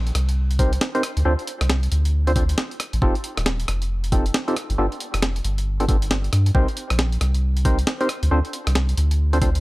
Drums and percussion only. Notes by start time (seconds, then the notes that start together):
0.07 closed hi-hat
0.15 cross-stick, closed hi-hat
0.29 closed hi-hat
0.51 closed hi-hat
0.59 kick, closed hi-hat
0.73 closed hi-hat
0.81 snare
0.95 closed hi-hat
1.03 cross-stick, closed hi-hat
1.17 closed hi-hat
1.39 closed hi-hat
1.47 closed hi-hat
1.61 cross-stick, closed hi-hat
1.70 snare
1.83 closed hi-hat
1.92 closed hi-hat
2.05 closed hi-hat
2.27 closed hi-hat
2.36 kick, closed hi-hat
2.49 closed hi-hat
2.58 snare
2.71 closed hi-hat
2.80 cross-stick, closed hi-hat
2.93 closed hi-hat
3.02 kick
3.15 closed hi-hat
3.24 closed hi-hat
3.37 cross-stick, closed hi-hat
3.46 snare
3.60 closed hi-hat
3.68 cross-stick, closed hi-hat
3.82 closed hi-hat
4.04 closed hi-hat
4.12 kick, closed hi-hat
4.26 closed hi-hat
4.34 snare
4.48 closed hi-hat
4.57 cross-stick, closed hi-hat
4.70 closed hi-hat
4.92 closed hi-hat
5.00 closed hi-hat
5.14 cross-stick, closed hi-hat
5.22 snare
5.36 closed hi-hat
5.45 closed hi-hat
5.58 closed hi-hat
5.80 closed hi-hat
5.89 kick, closed hi-hat
6.02 closed hi-hat
6.11 snare
6.24 closed hi-hat
6.33 cross-stick, closed hi-hat
6.46 closed hi-hat
6.55 kick
6.68 closed hi-hat
6.77 closed hi-hat
6.90 cross-stick, closed hi-hat
6.99 snare
7.12 closed hi-hat
7.21 cross-stick, closed hi-hat
7.34 closed hi-hat
7.57 closed hi-hat
7.65 kick, closed hi-hat
7.79 closed hi-hat
7.87 snare
8.01 closed hi-hat
8.09 cross-stick, closed hi-hat
8.23 closed hi-hat
8.45 closed hi-hat
8.53 closed hi-hat
8.67 cross-stick, closed hi-hat
8.75 snare
8.89 closed hi-hat
8.97 closed hi-hat
9.11 closed hi-hat
9.33 closed hi-hat
9.42 kick, closed hi-hat
9.55 closed hi-hat